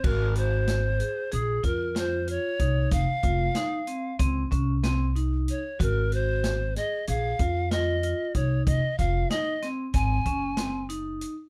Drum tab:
CC |x--------|---------|---------|---------|
HH |-xxxxxxxx|xxxxxxxxx|xxxxxxxxx|xxxxxxxxx|
SD |--o---o--|--o---o--|--oo--o--|--oo--o--|
BD |o----o--o|oo--oo---|o----o--o|oo--oo---|